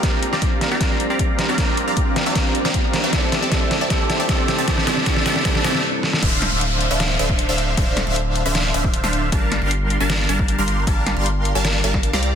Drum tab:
CC |----------------|----------------|----------------|----------------|
HH |x-x-x-x-x-x-x-x-|x-x-x-x-x-x-x-x-|x-x-x-x-x-x-x-x-|x-x-x-x-x-x-----|
SD |o--o--o-o-----o-|o-----o-o--o--o-|o-o-o-o-o-o-o-o-|oooooooooooo--oo|
BD |o---o---o---o---|o---o---o---o---|o---o---o---o---|o---o---o-------|

CC |x---------------|----------------|----------------|----------------|
HH |x-x-x-x-x-x-x-x-|x-x-x-x-x-x-x-x-|x-x-x-x-x-x-x-x-|x-x-x-x-x-x-x-x-|
SD |--o-----o-------|--o-----o----o--|--o-----o-------|--o-----o--o-o--|
BD |o----------o----|o----------o----|o----------o----|o----------o----|